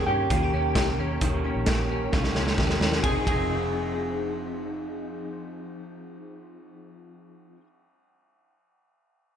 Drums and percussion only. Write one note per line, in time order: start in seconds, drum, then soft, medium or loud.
0.30 kick loud
0.30 closed hi-hat medium
0.75 kick medium
0.75 snare loud
0.75 closed hi-hat medium
1.21 kick medium
1.21 closed hi-hat medium
1.66 kick loud
1.66 snare loud
1.66 closed hi-hat medium
2.13 kick loud
2.13 snare medium
2.24 snare soft
2.35 snare medium
2.47 snare soft
2.58 kick medium
2.58 snare medium
2.69 snare medium
2.81 snare medium
2.92 snare medium
3.04 kick medium
3.04 ride medium
3.27 kick medium
3.27 ride medium